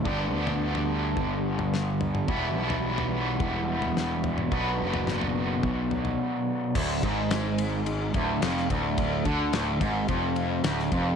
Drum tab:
CC |----------------|----------------|----------------|x---------------|
RD |----------------|----------------|----------------|--x-x-x-x-x-x-x-|
SD |------------o---|------------o---|----o-----------|----o-------oo--|
T2 |---------------o|---------------o|----o-----------|----------------|
FT |o--o-o--o--o--o-|o--o-o--o--o--o-|o--o-o--o-oo----|----------------|
BD |o-------o-------|o-------o-------|o-------o-------|o-o-------o---o-|

CC |----------------|
RD |x-x-x-x-x-x-x-x-|
SD |----o-------oo--|
T2 |----------------|
FT |----------------|
BD |o-o---o-o-----o-|